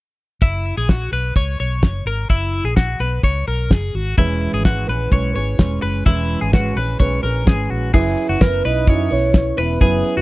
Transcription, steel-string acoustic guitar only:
4.17 E3 G#3 C#4 G#4 B4
4.64 G#3 C#4 G#4 B4
4.87 C#4 G#4 B4
5.11 G#3 C#4 G#4 B4
5.34 C#4 G#4 B4
5.58 G#3 C#4 G#4 B4
6.05 E3 G#3 C#4 G#4 B4
6.52 G#3 C#4 G#4 B4
6.76 C#4 G#4 B4
6.99 G#3 C#4 G#4 B4
7.22 C#4 G#4 B4
7.45 G#3 C#4 G#4 B4
7.93 F#3 C#4 E4 B4
8.39 F#3 C#4 E4 B4
8.64 C#4 E4 B4
8.87 F#3 C#4 E4 B4
9.10 C#4 E4 B4
9.57 C#4 E4 B4
9.80 F#3 C#4 E4 B4

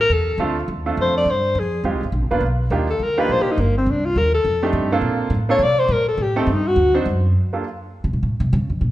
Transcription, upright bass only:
0.09 E2
0.38 D2
0.68 D#2
0.97 F2
1.25 G2
1.55 F2
1.84 D#2
1.94 C2
2.03 G#1
2.12 A#1
2.21 G#1
2.31 F1
2.40 B1
2.70 D#2
2.99 D2
3.29 A#1
3.46 muted upright bass stroke
3.58 G1
3.86 C2
4.15 D#2
4.44 F2
4.73 G2
5.01 A#2
5.30 A2
5.59 C3
5.88 A#2
6.18 A2
6.47 G2
6.76 D2
7.05 F#2
8.04 C3
8.13 A#2
8.23 A2
8.40 C3
8.53 C#3
8.70 F2
8.81 A#2

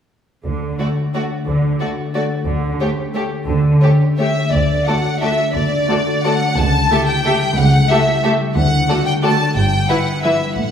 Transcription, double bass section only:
0.45 D2
1.46 D2
2.46 D2
3.47 D2
4.54 D2
5.55 D2
6.57 C#2
7.57 C#2
8.56 D2
9.55 G1
10.57 A1

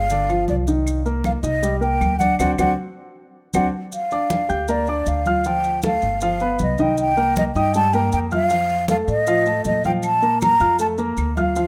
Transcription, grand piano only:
0.11 D3 D4
0.29 F3 F4
0.68 D#3 D#4
1.06 A#3 A#4
1.43 D#4 D#5
1.62 G3 G4
1.81 A#3 A#4
2.20 D4 D5
2.40 C4 D4 F#4
2.59 C4 D4 F#4
3.55 C4 D4 F#4
4.12 D4 D5 D6
4.49 G4 G5 G6
4.68 A#3 A#4 A#5
4.88 D4 D5 D6
5.26 F4 F5 F6
5.46 F3 F4 F5
5.84 A3 A4 A5
6.22 F3 F4 F5
6.41 B3 B4 B5
6.79 D#3 D#4 D#5
7.17 A#3 A#4 A#5
7.56 D#4 D#5 D#6
7.75 G3 G4 G5
7.94 A#3 A#4 A#5
8.32 F4 F5 F6
8.50 F3 F4 F5
8.89 A3 A4 A5
9.27 F3 F4 F5
9.46 A3 A4 A5
9.85 F3 F4 F5
10.22 A#3 A#4 A#5
10.60 F4 F5 F6
10.79 A3 A4 A5
10.98 A#3 A#4 A#5
11.37 F4 F5 F6
11.56 F3 F4 F5

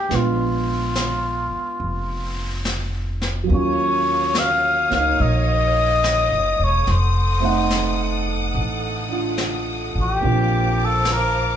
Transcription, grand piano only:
Already playing: A#3 C4 D4 D#4
0.09 G#3 B3 D4
0.14 F4
3.43 F#3 A#3
3.51 C#4 F4
4.90 A#3 D#4
7.40 A3 C4 D#4
7.45 F#5
9.09 D4 F4
10.21 A#3 C4 D4 F4

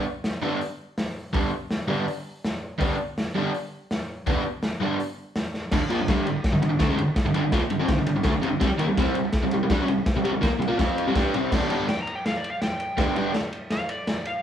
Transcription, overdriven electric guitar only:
0.42 G2 D3 G3 B3 D4
1.33 G2 D3 G3 B3 D4
1.88 G2 D3 G3 B3 D4
2.79 G2 D3 G3 B3 D4
3.35 G2 D3 G3 B3 D4
4.27 G2 D3 G3 B3 D4
4.80 G2 D3 G3 B3 D4
5.73 G2 D3
5.83 muted overdriven electric guitar stroke
5.90 A#2 F3
6.00 G2 D3
6.09 G2 D3 G3
6.27 G2 D3
6.36 muted overdriven electric guitar stroke
6.53 G2 D3
6.62 G2 D3
6.69 G2 D3
6.79 D3 A3
6.89 C#3 G#3
6.98 G2 D3
7.08 muted overdriven electric guitar stroke
7.25 G2 D3
7.34 G2 D3
7.44 G2 D3
7.52 A#2 F3
7.62 muted overdriven electric guitar stroke
7.71 G2 D3
7.79 F3 C4
7.88 G2 D3
7.97 G2 D3
8.06 G2 D3
8.16 G2 D3
8.23 D3 A3
8.33 G2 D3
8.42 F2 C3
8.50 G2 D3
8.61 C3 G3
8.70 muted overdriven electric guitar stroke
8.79 D#3 A#3
8.89 C3 G3
8.98 C3 G3 C4
9.15 C3 G3
9.25 muted overdriven electric guitar stroke
9.43 C3 G3
9.53 C3 G3
9.63 C3 G3
9.71 G3 D4
9.80 F#3 C#4
9.89 C3 G3
9.98 muted overdriven electric guitar stroke
10.16 C3 G3
10.24 C3 G3
10.33 C3 G3
10.41 D#3 A#3
10.49 muted overdriven electric guitar stroke
10.59 C3 G3
10.68 A#3 F4
10.77 F3 C4 F4
11.07 C3 G3
11.15 G3 D4 G4
11.34 C3 G3 C4
11.51 G2 D3 G3 B3 D4
11.69 G2 D3 G3 B3 D4
12.97 G2 D3 G3 B3 D4
13.16 G2 D3 G3 B3 D4

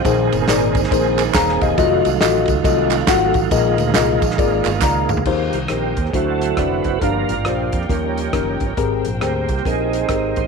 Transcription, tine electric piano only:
Already playing: F5
0.06 A#2 D#4 G#4 A#4 C5
0.49 D#4 G#4 A#4 D5
0.92 D#4 G#4 A#4 C5
1.35 G#4 F5 A#5
1.62 G4 D#5 F5
1.78 F4 F#4 A4 D#5
2.21 F4 F#4 A4 D#5
2.64 F4 F#4 A4 D#5
3.08 F4 F#4 A4 F#5
3.52 A#2 F4 G#4 A#4 D#5
3.95 F4 G#4 A#4 D#5
4.38 F4 G#4 A#4 D5
4.83 D5 A#5
5.11 G#4 F5
5.27 D#3 D#4 G4 A#4 C5
5.70 D#4 G4 A#4 C5
6.14 D3 D4 F#4 A4 C5
6.58 D4 F#4 A4 D5
7.02 G2 D4 F4 G4 A#4
7.45 D4 F4 G4 C5
7.89 D#3 C#4 D#4 G4 A#4
8.33 C#4 D#4 G4 A#4
8.78 G#2 C4 G4 G#4 A#4
9.20 C4 G4 G#4 C5
9.66 C4 G4 G#4 A#4
10.10 C4 G4 G#4 A#4

